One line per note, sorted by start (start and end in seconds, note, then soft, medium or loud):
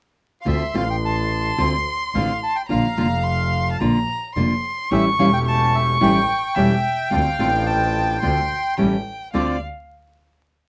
0.41 0.63 D3 medium
0.41 0.47 F5 medium
0.41 2.65 C6 medium
0.46 0.70 D2 medium
0.46 0.63 A3 medium
0.46 0.63 C4 medium
0.46 0.63 F4 medium
0.46 0.76 E5 medium
0.74 1.54 A1 medium
0.74 0.83 D3 medium
0.74 0.83 A3 medium
0.74 0.83 C4 medium
0.74 0.84 F4 medium
0.74 0.89 F5 medium
0.90 0.96 G5 medium
1.05 1.61 A5 medium
1.58 1.82 D2 medium
1.58 1.75 D3 medium
1.58 1.75 A3 medium
1.58 1.75 C4 medium
1.58 1.75 F4 medium
1.58 2.11 C6 medium
2.15 2.38 A1 medium
2.15 2.31 D3 medium
2.15 2.31 A3 medium
2.15 2.31 C4 medium
2.15 2.32 F4 medium
2.15 2.40 F5 medium
2.43 2.57 A5 medium
2.56 2.62 G5 medium
2.69 2.93 A#1 medium
2.69 2.86 D3 soft
2.69 2.86 A#3 soft
2.69 2.86 D4 medium
2.69 2.87 F4 medium
2.69 3.77 F5 medium
2.69 3.25 A#5 medium
2.97 3.77 F1 medium
2.97 3.06 D3 medium
2.97 3.06 A#3 medium
2.97 3.07 D4 medium
2.97 3.07 F4 medium
3.23 3.71 C6 medium
3.72 3.81 A5 medium
3.80 4.04 A#1 medium
3.80 3.97 D3 medium
3.80 3.97 A#3 medium
3.80 3.98 D4 medium
3.80 3.98 F4 medium
3.80 4.35 A#5 medium
4.35 4.60 F1 medium
4.35 4.53 D3 medium
4.35 4.53 A#3 medium
4.35 4.53 D4 medium
4.35 4.54 F4 medium
4.35 4.91 C6 medium
4.90 5.15 A1 medium
4.90 5.08 E3 medium
4.90 5.08 G3 soft
4.90 5.14 A3 soft
4.90 5.15 C#4 soft
4.90 5.08 C#4 medium
4.90 5.08 E4 medium
4.90 5.15 G4 medium
4.90 5.05 E5 medium
4.90 5.45 C#6 loud
5.18 5.98 E1 medium
5.18 5.28 E3 medium
5.18 5.28 G3 medium
5.18 5.97 A3 medium
5.18 5.97 C#4 medium
5.18 5.28 C#4 medium
5.18 5.28 E4 medium
5.18 5.98 G4 medium
5.18 5.26 F5 medium
5.33 5.39 G5 medium
5.45 5.76 A5 medium
5.45 6.57 C#6 loud
5.75 5.87 E5 medium
6.00 6.25 A1 medium
6.00 6.18 E3 medium
6.00 6.18 G3 medium
6.00 6.25 A3 soft
6.00 6.18 C#4 medium
6.00 6.25 C#4 soft
6.00 6.18 E4 medium
6.00 6.25 G4 medium
6.00 8.74 G5 medium
6.56 6.81 E1 medium
6.56 6.73 E3 soft
6.56 6.74 G3 medium
6.56 6.80 A3 medium
6.56 6.73 C#4 medium
6.56 6.80 C#4 soft
6.56 6.74 E4 medium
6.56 6.80 G4 medium
6.56 7.13 E5 medium
7.10 7.36 D2 medium
7.10 7.28 D3 soft
7.10 7.28 A3 medium
7.10 7.28 C4 medium
7.10 7.35 C4 soft
7.10 7.35 D4 soft
7.10 7.29 F4 medium
7.10 7.35 F4 medium
7.10 7.68 F5 medium
7.39 8.19 A1 medium
7.39 7.48 D3 medium
7.39 7.48 A3 medium
7.39 8.18 C4 medium
7.39 7.49 C4 medium
7.39 8.18 D4 medium
7.39 8.18 F4 medium
7.39 7.49 F4 medium
7.67 8.20 A5 medium
8.21 8.47 D2 medium
8.21 8.39 D3 medium
8.21 8.39 A3 medium
8.21 8.39 C4 medium
8.21 8.46 C4 soft
8.21 8.46 D4 soft
8.21 8.40 F4 medium
8.21 8.46 F4 medium
8.21 8.79 C6 medium
8.77 9.02 A1 medium
8.77 8.95 E3 medium
8.77 8.95 G3 medium
8.77 9.01 A3 soft
8.77 9.01 C#4 soft
8.77 8.96 C#4 medium
8.77 8.96 E4 medium
8.77 9.02 G4 medium
8.77 9.33 G5 medium
9.33 9.58 D2 soft
9.33 9.56 D3 medium
9.33 9.56 A3 medium
9.33 9.57 C4 soft
9.33 9.56 C4 medium
9.33 9.57 D4 soft
9.33 9.57 F4 medium
9.33 9.60 D5 medium
9.33 9.60 F5 medium